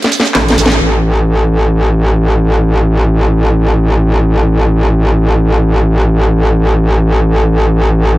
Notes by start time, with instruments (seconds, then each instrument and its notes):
0.02 snare, closed hi-hat
0.04 snare
0.11 snare, closed hi-hat, open hi-hat, shaker
0.20 snare
0.25 snare, closed hi-hat, shaker
0.34 wobble bass A1, snare, clap, closed hi-hat, shaker
0.48 snare, closed hi-hat
0.50 snare
0.58 wobble bass A1, snare, closed hi-hat, open hi-hat, shaker
0.66 snare
0.72 closed hi-hat, shaker
0.81 wobble bass A1